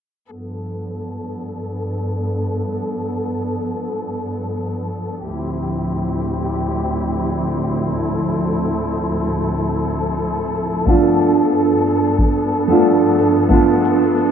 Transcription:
0.31 5.22 G2 medium
0.31 14.32 F3 medium
0.31 5.22 B3 medium
0.31 5.22 A4 medium
0.31 shaker soft
0.66 shaker medium
0.84 shaker soft
0.99 shaker soft
1.32 shaker medium
1.50 shaker soft
1.64 shaker soft
1.98 shaker medium
2.16 shaker soft
2.31 shaker soft
2.64 shaker medium
2.82 shaker soft
2.98 shaker soft
3.30 shaker medium
3.49 shaker soft
3.63 shaker soft
3.96 shaker medium
4.14 shaker soft
4.29 shaker soft
4.62 shaker medium
4.80 shaker soft
4.94 shaker soft
5.27 10.83 D2 medium
5.27 10.83 A2 medium
5.27 10.83 C4 medium
5.27 10.83 E4 medium
5.27 7.88 G4 medium
5.27 shaker medium
5.46 shaker soft
5.61 shaker soft
5.93 shaker medium
6.11 shaker soft
6.26 shaker soft
6.59 shaker medium
6.77 shaker soft
6.92 shaker soft
7.25 shaker medium
7.43 shaker soft
7.58 shaker soft
7.91 14.32 A4 medium
7.91 shaker medium
8.09 shaker soft
8.24 shaker soft
8.57 shaker medium
8.75 shaker soft
8.90 shaker soft
9.23 shaker medium
9.41 shaker soft
9.56 shaker soft
9.90 shaker medium
10.07 shaker soft
10.22 shaker soft
10.55 shaker medium
10.74 shaker soft
10.85 14.32 G2 medium
10.85 12.65 A3 medium
10.85 12.65 B3 medium
10.85 14.32 B3 medium
10.85 12.66 D4 medium
10.85 12.67 F4 medium
10.85 kick loud
10.85 shaker soft
11.21 shaker medium
11.39 shaker soft
11.54 shaker soft
11.87 shaker medium
12.05 shaker soft
12.19 kick loud
12.19 shaker soft
12.53 shaker medium
12.68 13.46 A3 medium
12.68 13.47 B3 medium
12.68 13.47 D4 medium
12.68 13.48 F4 medium
12.68 shaker soft
12.86 shaker soft
13.19 shaker medium
13.37 shaker soft
13.49 14.32 A3 medium
13.49 14.32 B3 medium
13.49 14.32 D4 medium
13.49 14.32 F4 medium
13.49 kick loud
13.49 shaker soft
13.84 shaker medium
14.03 shaker soft
14.17 shaker soft

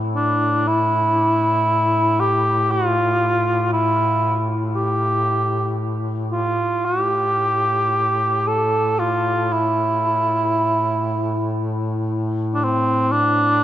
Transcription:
0.00 6.70 A2 soft
0.16 0.69 D4 medium
0.68 2.22 E4 medium
2.20 2.73 G4 medium
2.72 3.73 F4 medium
3.73 4.45 E4 medium
4.76 5.75 G4 medium
6.32 6.87 F4 medium
6.85 13.64 A2 soft
6.85 8.49 G4 medium
8.48 9.01 A4 medium
8.99 9.54 F4 medium
9.53 11.59 E4 medium
12.55 12.65 D4 medium
12.64 13.13 C4 medium
13.12 13.64 D4 loud

